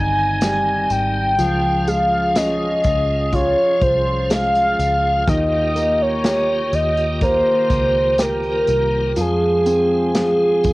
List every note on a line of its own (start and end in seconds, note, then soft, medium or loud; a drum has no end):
0.00 0.86 G1 medium
0.00 1.35 D#3 medium
0.00 0.37 G3 medium
0.00 1.35 G#3 medium
0.00 1.35 C4 medium
0.00 1.35 D#4 medium
0.00 0.92 G#5 loud
0.41 1.36 G3 medium
0.41 snare loud
0.41 closed hi-hat medium
0.41 tambourine medium
0.90 1.35 G#1 medium
0.90 1.89 G5 loud
0.90 closed hi-hat medium
0.90 tambourine soft
1.38 2.80 C#2 medium
1.38 5.23 F3 medium
1.38 5.24 F3 medium
1.38 5.25 C#4 medium
1.38 10.73 F4 medium
1.38 5.25 G#4 medium
1.38 closed hi-hat medium
1.38 tambourine soft
1.87 3.78 G#3 medium
1.87 2.38 F5 loud
1.87 closed hi-hat medium
1.87 tambourine soft
2.35 4.27 C#4 medium
2.35 3.36 D#5 medium
2.35 snare loud
2.35 closed hi-hat medium
2.35 tambourine medium
2.84 3.54 C#2 medium
2.84 kick medium
2.84 closed hi-hat medium
2.84 tambourine soft
3.33 5.24 F4 medium
3.33 3.84 C#5 loud
3.33 kick medium
3.33 closed hi-hat medium
3.82 4.75 C2 medium
3.82 4.31 C5 loud
3.82 kick medium
3.82 closed hi-hat medium
4.30 5.25 G#3 medium
4.30 5.30 F5 loud
4.30 snare loud
4.30 closed hi-hat medium
4.30 tambourine medium
4.55 closed hi-hat soft
4.79 5.24 C#2 medium
4.79 closed hi-hat medium
4.79 tambourine medium
5.28 6.69 D#2 loud
5.28 9.12 D#3 medium
5.28 9.12 A#3 medium
5.28 9.12 G4 medium
5.28 6.03 D#5 loud
5.28 kick loud
5.28 closed hi-hat medium
5.28 tambourine soft
5.76 7.21 A#3 soft
5.76 closed hi-hat medium
5.76 tambourine soft
6.02 6.76 C#5 loud
6.24 8.15 G4 medium
6.24 snare loud
6.24 closed hi-hat medium
6.24 tambourine medium
6.73 7.41 D#2 medium
6.73 7.22 D#5 loud
6.73 closed hi-hat medium
6.73 tambourine soft
6.97 closed hi-hat soft
7.21 9.13 A#3 medium
7.21 8.23 C5 medium
7.21 kick medium
7.21 closed hi-hat medium
7.70 8.63 C#2 medium
7.70 kick medium
7.70 closed hi-hat medium
7.70 tambourine soft
8.18 9.14 G4 medium
8.18 9.22 A#4 loud
8.18 snare loud
8.18 closed hi-hat medium
8.18 tambourine medium
8.43 closed hi-hat medium
8.67 9.13 C2 medium
8.67 closed hi-hat medium
8.67 tambourine soft
9.16 10.60 F2 loud
9.16 10.14 F3 medium
9.16 10.73 G#3 medium
9.16 10.73 C4 medium
9.16 closed hi-hat medium
9.16 tambourine soft
9.21 10.73 G#4 medium
9.66 10.73 C4 soft
9.66 closed hi-hat medium
9.66 tambourine medium
10.15 10.73 F3 medium
10.15 snare loud
10.15 closed hi-hat medium
10.15 tambourine medium
10.64 10.73 F2 medium
10.64 kick medium
10.64 closed hi-hat medium
10.64 tambourine soft